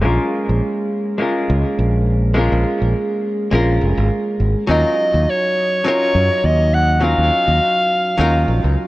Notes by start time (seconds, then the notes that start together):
0.01 A#1 G#3 A#3 C#4 F4 A#4
0.49 A#1
1.18 G#3 A#3 C#4 F4 A#4
1.49 C#2
1.78 A#1
2.34 G#3 A#3 C#4 F4 A#4
2.52 A#1
2.82 A#1
3.51 A#1 G#3 A#3 C#4 F4 A#4
3.81 F1
3.97 G#1
4.40 G#1
4.67 D#2 F#3 C#4 D#4 F4 A#4
4.72 D#5
5.14 D#2
5.30 C#5
5.84 F#3 C#4 D#4 F4 A#4 C#5
6.14 F#2
6.44 D#2 D#5
6.74 F#5
7.01 F#3 C#4 D#4 F4 A#4 F5
7.18 D#2
7.48 D#2
8.18 D#2 F#3 C#4 D#4 F4 A#4
8.48 A#1
8.64 C#2